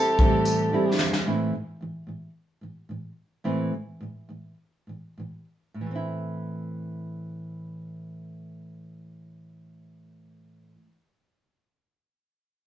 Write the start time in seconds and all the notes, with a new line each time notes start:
Already playing: A2 G3 A3 C4 E4 G4 A4
0.19 A2 E3 G3 C4 E4, kick
0.45 tambourine
0.73 E3 G3 C4 E4
0.99 snare
1.13 snare
1.26 A2 E3 A3 C4 E4
1.81 A2 E3
2.07 A2 E3
2.61 A2 E3
2.89 A2 E3
3.44 A2 E3 A3 C4 E4
3.72 A2
4.01 A2 E3
4.29 A2 E3
4.87 A2 E3
5.18 A2 E3
5.74 A2
5.81 E3
5.86 A3
5.91 C4
5.95 E4